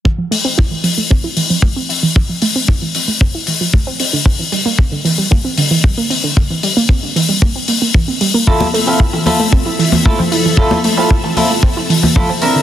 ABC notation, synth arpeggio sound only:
X:1
M:4/4
L:1/16
Q:1/4=114
K:F
V:1 name="Synth arpeggio sound"
E, F, A, C E E, F, A, C E E, F, A, C E E, | E, F, A, C E E, F, A, C E E, F, A, C C D, | D, E, G, B, C D, E, G, B, C D, E, G, B, C D, | D, E, G, B, C D, E, G, B, C B, B, E, C G, B, |
E, F, A, C E E, F, A, C E E, E, A, C E E, | E, F, A, C E E, F, A, C E E, E, A, C C D, |]